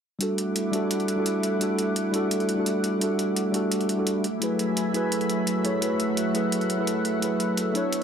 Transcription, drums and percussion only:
0.21 closed hi-hat
0.38 closed hi-hat
0.56 closed hi-hat
0.73 closed hi-hat
0.91 closed hi-hat
1.00 closed hi-hat
1.08 closed hi-hat
1.26 closed hi-hat
1.43 closed hi-hat
1.61 closed hi-hat
1.79 closed hi-hat
1.96 closed hi-hat
2.14 closed hi-hat
2.31 closed hi-hat
2.40 closed hi-hat
2.49 closed hi-hat
2.66 closed hi-hat
2.84 closed hi-hat
3.01 closed hi-hat
3.19 closed hi-hat
3.36 closed hi-hat
3.54 closed hi-hat
3.72 closed hi-hat
3.81 closed hi-hat
3.89 closed hi-hat
4.07 closed hi-hat
4.24 closed hi-hat
4.42 closed hi-hat
4.59 closed hi-hat
4.77 closed hi-hat
4.94 closed hi-hat
5.12 closed hi-hat
5.21 closed hi-hat
5.29 closed hi-hat
5.47 closed hi-hat
5.65 closed hi-hat
5.82 closed hi-hat
6.00 closed hi-hat
6.17 closed hi-hat
6.35 closed hi-hat
6.52 closed hi-hat
6.61 closed hi-hat
6.70 closed hi-hat
6.87 closed hi-hat
7.05 closed hi-hat
7.22 closed hi-hat
7.40 closed hi-hat
7.57 closed hi-hat
7.75 closed hi-hat
7.93 closed hi-hat

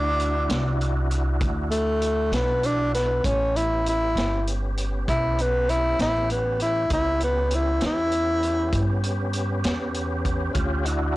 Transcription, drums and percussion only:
0.20 closed hi-hat
0.50 snare, closed hi-hat
0.81 closed hi-hat
1.11 closed hi-hat
1.41 kick, closed hi-hat
1.71 closed hi-hat
2.02 closed hi-hat
2.33 snare, closed hi-hat
2.63 closed hi-hat
2.94 snare, closed hi-hat
3.24 kick, closed hi-hat
3.56 closed hi-hat
3.86 closed hi-hat
4.17 snare, closed hi-hat
4.47 closed hi-hat
4.77 closed hi-hat
5.08 kick, closed hi-hat
5.39 closed hi-hat
5.69 closed hi-hat
5.99 snare, closed hi-hat
6.30 closed hi-hat
6.60 closed hi-hat
6.90 kick, closed hi-hat
7.20 closed hi-hat
7.51 closed hi-hat
7.81 snare, closed hi-hat
8.12 closed hi-hat
8.43 closed hi-hat
8.73 kick, closed hi-hat
9.03 closed hi-hat
9.33 closed hi-hat
9.64 snare, closed hi-hat
9.94 closed hi-hat
10.25 kick, closed hi-hat
10.55 kick, closed hi-hat
10.85 closed hi-hat

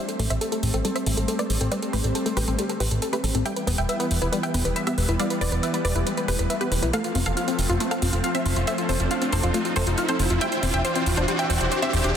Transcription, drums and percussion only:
0.09 closed hi-hat
0.20 open hi-hat
0.30 closed hi-hat
0.41 closed hi-hat
0.52 closed hi-hat
0.63 open hi-hat
0.74 closed hi-hat
0.85 closed hi-hat
0.96 closed hi-hat
1.06 open hi-hat
1.17 closed hi-hat
1.28 closed hi-hat
1.39 closed hi-hat
1.50 open hi-hat
1.61 closed hi-hat
1.72 closed hi-hat
1.82 closed hi-hat
1.93 open hi-hat
2.04 closed hi-hat
2.15 closed hi-hat
2.26 closed hi-hat
2.37 open hi-hat
2.48 closed hi-hat
2.59 closed hi-hat
2.69 closed hi-hat
2.80 open hi-hat
2.91 closed hi-hat
3.02 closed hi-hat
3.13 closed hi-hat
3.24 open hi-hat
3.35 closed hi-hat
3.46 closed hi-hat
3.56 closed hi-hat
3.67 open hi-hat
3.78 closed hi-hat
3.89 closed hi-hat
4.00 closed hi-hat
4.11 open hi-hat
4.22 closed hi-hat
4.33 closed hi-hat
4.43 closed hi-hat
4.54 open hi-hat
4.65 closed hi-hat
4.76 closed hi-hat
4.87 closed hi-hat
4.98 open hi-hat
5.09 closed hi-hat
5.20 closed hi-hat
5.30 closed hi-hat
5.41 open hi-hat
5.52 closed hi-hat
5.63 closed hi-hat
5.74 closed hi-hat
5.85 open hi-hat
5.96 closed hi-hat
6.07 closed hi-hat
6.17 closed hi-hat
6.28 open hi-hat
6.39 closed hi-hat
6.50 closed hi-hat
6.61 closed hi-hat
6.72 open hi-hat
6.83 closed hi-hat
6.93 closed hi-hat
7.04 closed hi-hat
7.15 open hi-hat
7.26 closed hi-hat
7.37 closed hi-hat
7.48 closed hi-hat
7.59 open hi-hat
7.70 closed hi-hat
7.80 closed hi-hat
7.91 closed hi-hat
8.02 open hi-hat
8.13 closed hi-hat
8.24 closed hi-hat
8.35 closed hi-hat
8.46 open hi-hat
8.56 closed hi-hat
8.67 closed hi-hat
8.78 closed hi-hat
8.89 open hi-hat
9.00 closed hi-hat
9.11 closed hi-hat
9.22 closed hi-hat
9.32 open hi-hat
9.43 closed hi-hat
9.54 closed hi-hat
9.65 closed hi-hat
9.76 open hi-hat
9.87 closed hi-hat
9.98 closed hi-hat
10.08 closed hi-hat
10.19 open hi-hat
10.30 closed hi-hat
10.41 closed hi-hat
10.52 closed hi-hat
10.63 open hi-hat
10.74 closed hi-hat
10.85 closed hi-hat
10.96 closed hi-hat
11.06 open hi-hat
11.17 closed hi-hat
11.28 closed hi-hat
11.39 closed hi-hat
11.50 open hi-hat
11.61 closed hi-hat
11.72 closed hi-hat
11.83 closed hi-hat
11.93 open hi-hat
12.04 closed hi-hat

